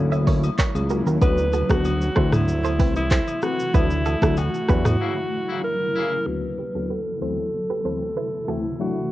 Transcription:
Already playing: D2 F#3 A#3 C#4 E4
0.12 C#5 E5, high agogo, shaker
0.27 F#3 A#3 C#4 E4 A#4 C#5, kick, open hi-hat
0.43 high agogo, shaker
0.58 A#4 C#5, kick, clap, low woodblock, shaker
0.75 C#2, high agogo, shaker
0.89 F#3 A#3 C#4 E4 F#4 A#4, shaker
1.06 D#2 F#4 A#4, shaker
1.21 D2 F#3 B3 D4 F#4 B4, kick, high agogo, shaker
1.38 shaker
1.53 F#4 A4, high agogo, shaker
1.69 D2 F#3 B3 D4 F#4 G4 B4, kick, cross-stick, shaker
1.84 high agogo, shaker
2.01 shaker
2.16 D2 C3 E3 A3 C4 E4 A4 C5, kick, cross-stick
2.32 E4, cross-stick, mid tom, high agogo, shaker
2.48 shaker
2.64 A4 C5, high agogo, shaker
2.79 C2 E3 A3 C4 E4 G4 B4, kick, open hi-hat
2.96 E4, high agogo, shaker
3.11 A4 C5, kick, clap, low woodblock, shaker
3.28 high agogo, shaker
3.42 E3 A3 C4 E4 F#4, cross-stick, shaker
3.60 shaker
3.74 D2 F#3 A3 D4 E4 F#4 B4, kick, high agogo, shaker
3.90 shaker
4.06 F#4 A4, high agogo, shaker
4.22 D2 F#3 A3 D4 E4 F#4 A4, kick, cross-stick, shaker
4.37 F#4, high agogo, low woodblock, shaker
4.54 shaker
4.68 E2 F#3 A3 D4 E4 G4 B4, kick, cross-stick, shaker
4.85 cross-stick, mid tom, high agogo, shaker
5.00 C#3 A#3 E4
5.49 C#3 A#3 E4
5.64 A#4
5.95 C#3 A#3 E4
6.27 D2 F#3 B3 D4 F#4 B4
6.59 G4 B4
6.75 D2 F#3 B3 D4 F#4 A4
6.90 F#4 A4 B4
7.21 D2 C3 E3 A3 C4 E4 A4 C5
7.70 G4 B4
7.84 D2 E3 A3 C4 E4 A4 C5
8.17 E4 B4
8.48 D2 E3 A3 C4 E4 F#4 A4
8.79 F#3 A3 D4 E4 F#4

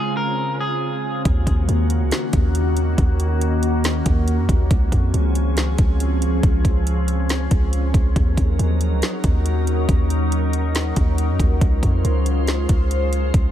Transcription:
Already playing: C#3 G#3 C4 F4 G#4
0.17 A#4
0.60 G#4
1.25 D#2 D#3 A#3 C#4 F#4, kick, closed hi-hat
1.47 D#2, kick, closed hi-hat
1.69 D#2, closed hi-hat
1.90 closed hi-hat
2.01 C#2
2.11 snare, closed hi-hat
2.33 D#2, kick, closed hi-hat
2.55 closed hi-hat
2.77 closed hi-hat
2.98 D#2, kick, closed hi-hat
3.20 closed hi-hat
3.41 closed hi-hat
3.63 closed hi-hat
3.84 snare, closed hi-hat
4.06 D#2, kick, closed hi-hat
4.28 closed hi-hat
4.38 F#2
4.49 D#2, kick, closed hi-hat
4.71 C#2 F3 C4 G#4, kick, closed hi-hat
4.92 F2, kick, closed hi-hat
5.14 C#2, closed hi-hat
5.35 closed hi-hat
5.57 snare, closed hi-hat
5.78 C#2, kick, closed hi-hat
6.00 closed hi-hat
6.22 closed hi-hat
6.43 C#2, kick, closed hi-hat
6.65 C#2, kick, closed hi-hat
6.87 closed hi-hat
7.08 closed hi-hat
7.29 snare, closed hi-hat
7.51 C#2, kick, closed hi-hat
7.73 closed hi-hat
7.94 C#2, kick, closed hi-hat
8.16 D#2 F#3 C#4 D#4 A#4, kick, closed hi-hat
8.37 D#2, kick, closed hi-hat
8.59 D#2, closed hi-hat
8.81 closed hi-hat
8.92 C#2
9.02 snare, closed hi-hat
9.24 D#2, kick, closed hi-hat
9.46 closed hi-hat
9.67 closed hi-hat
9.89 D#2, kick, closed hi-hat
10.10 closed hi-hat
10.32 closed hi-hat
10.53 closed hi-hat
10.75 snare, closed hi-hat
10.96 D#2, kick, closed hi-hat
11.18 closed hi-hat
11.29 F#2
11.40 D#2, kick, closed hi-hat
11.61 C#2 G#3 F4 C5, kick, closed hi-hat
11.83 F2, kick, closed hi-hat
12.05 C#2, closed hi-hat
12.26 closed hi-hat
12.47 snare, closed hi-hat
12.69 C#2, kick, closed hi-hat
12.91 closed hi-hat
13.13 closed hi-hat
13.34 C#2, kick, closed hi-hat

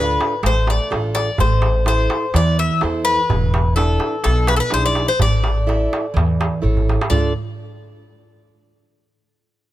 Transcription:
Already playing: D2 D4 F4 A4 B4
0.21 darbuka tek
0.43 A1 A3 C5, darbuka tek
0.67 D5, darbuka tek
0.79 darbuka tek
0.90 A1 D4 F4 A4, darbuka tek
1.03 darbuka tek
1.15 D5, darbuka tek
1.38 A1 A3 C5, darbuka dum
1.62 darbuka tek
1.86 E4 A4 C5, darbuka tek
2.10 darbuka tek
2.34 E2 E3 D5, darbuka tek
2.59 E5
2.71 darbuka tek
2.81 E2 E4 A4 C5, darbuka tek
2.94 darbuka tek
3.05 B4
3.30 E1 E3, darbuka dum
3.54 darbuka tek
3.76 D4 E4 A4 B4, darbuka tek
4.00 darbuka tek
4.24 B1 B2 A4, darbuka tek
4.47 B4, darbuka tek
4.56 A4 B4, darbuka tek
4.70 B1 D4 E4 G#4 C5, darbuka tek
4.83 D5, darbuka tek
4.95 darbuka tek
5.08 C5
5.19 A1 A3 D5, darbuka dum
5.44 darbuka tek
5.57 darbuka tek
5.67 E4 A4 E5, darbuka tek
5.93 darbuka tek
6.14 E2 E3, darbuka tek, darbuka dum
6.41 darbuka tek
6.62 A1 E4 A4 C#5, darbuka dum
6.77 darbuka dum
6.89 darbuka tek
7.01 darbuka tek
7.10 D2 D3 A3 D4 F4 A4 D5, darbuka dum

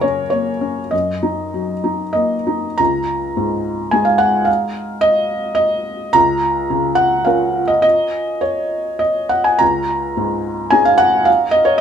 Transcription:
Already playing: F#2 C#3 C#4 A#4
0.01 C#4 C#5
0.30 A#3 C#5
0.61 C#4
0.91 F#2 D#5
1.23 D#4
1.54 F#3
1.84 D#4
2.13 A#3 D#5
2.47 D#4
2.78 C#2 A#5
3.37 G#2
3.91 G#3 D#4 G#4 G#5
4.05 F5
4.18 F#5
4.45 F5
5.01 D#5
5.55 D#5
6.13 C#2 A#5
6.70 C#3
6.95 F#5
7.25 C#4 F4 A#4 F5
7.68 D#5
7.82 D#5
8.41 C#5
8.99 D#5
9.29 F#5
9.44 G#5
9.59 C#2 A#5
10.17 G#2
10.70 C#4 D#4 G#4 G#5
10.85 F5
10.98 F#5
11.25 F5
11.51 D#5
11.65 C#5

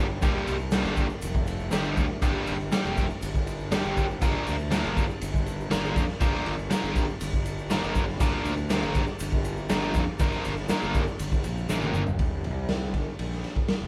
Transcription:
Already playing: G1
0.22 G1 G3 A#3 D4 G4, kick, ride, shaker
0.47 C2, ride, shaker
0.60 shaker
0.71 G3 A#3 D4 G4, snare, ride, shaker
0.84 G1, snare, shaker
0.97 kick, ride, shaker
1.09 shaker
1.22 F1, ride, shaker
1.35 kick
1.47 ride, shaker
1.59 shaker
1.71 G1 G3 A#3 D4 G4, snare, ride, shaker
1.84 shaker
1.97 D2, kick, ride, shaker
2.22 G1 G3 A#3 D4 G4, kick, ride, shaker
2.47 G1, ride, shaker
2.60 shaker
2.72 G3 A#3 D4 G4, snare, ride, shaker
2.85 F1, shaker
2.97 kick, ride, shaker
3.10 shaker
3.22 G1, ride, shaker
3.35 kick, shaker
3.47 ride, shaker
3.60 shaker
3.71 G3 A#3 D4 G4, snare, ride, shaker
3.84 G1, shaker
3.97 kick, ride, shaker
4.10 shaker
4.22 G1 F3 A#3 D4 A#4, kick, ride, shaker
4.46 D2, ride, shaker
4.59 shaker
4.71 F3 A#3 D4 A#4, snare, ride, shaker
4.84 G1, shaker
4.97 kick, ride, shaker
5.10 shaker
5.21 G1, ride, shaker
5.34 kick, shaker
5.46 ride, shaker
5.60 shaker
5.70 G1 F3 A#3 D4 A#4, snare, ride, shaker
5.85 shaker
5.96 F2, kick, ride, shaker
6.08 snare
6.20 G1 F3 A#3 D4 A#4, kick, ride, shaker
6.34 snare
6.46 G1, ride
6.59 shaker
6.70 F3 A#3 D4 A#4, snare, ride, shaker
6.84 G1, shaker
6.95 kick, ride, shaker
7.09 shaker
7.21 G1, ride, shaker
7.33 kick, shaker
7.46 ride, shaker
7.59 shaker
7.70 F3 A#3 D4 A#4, snare, ride, shaker
7.83 G1, shaker
7.95 kick, ride, shaker
8.09 snare
8.20 G1 F3 A#3 D4 A#4, kick, ride, shaker
8.45 D2, ride, shaker
8.57 shaker
8.70 F3 A#3 D4 A#4, snare, ride, shaker
8.83 G1, shaker
8.94 kick, ride, shaker
9.07 shaker
9.19 G1, ride, shaker
9.32 kick, shaker
9.45 ride, shaker
9.57 shaker
9.69 G1 F3 A#3 D4 A#4, snare, ride, shaker
9.82 shaker
9.94 F2, kick, ride, shaker
10.19 G1 F3 A#3 D4 A#4, kick, ride, shaker
10.32 snare, shaker
10.44 G1, ride, shaker
10.57 snare, shaker
10.69 F3 A#3 D4 A#4, snare, ride, shaker
10.82 G1, shaker
10.94 kick, ride, shaker
11.07 shaker
11.19 G1, ride, shaker
11.32 kick, shaker
11.44 A#1, ride, shaker
11.58 shaker
11.69 A1 F3 A#3 D4 A#4, snare, shaker
11.82 high tom, shaker
11.94 G1, mid tom, shaker
12.07 floor tom, shaker
12.19 G1, kick, ride
12.44 C2, ride
12.69 snare, ride
12.94 G1, kick, ride
13.19 A#1, ride
13.32 snare
13.44 snare, ride
13.56 kick
13.68 snare, ride
13.81 F1

